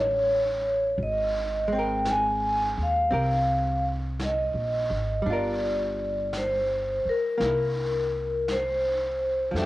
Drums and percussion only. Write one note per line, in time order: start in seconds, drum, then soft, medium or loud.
0.98 brush sweep soft
2.05 brush sweep soft
2.05 snare soft
2.05 hi-hat pedal soft
3.12 brush sweep soft
4.19 brush sweep soft
4.19 snare soft
4.19 hi-hat pedal soft
5.26 brush sweep soft
6.33 brush sweep soft
6.33 snare soft
6.33 hi-hat pedal soft
7.40 brush sweep soft
7.40 snare soft
8.48 brush sweep soft
8.48 snare soft
8.48 hi-hat pedal soft
9.56 brush sweep soft
9.56 snare soft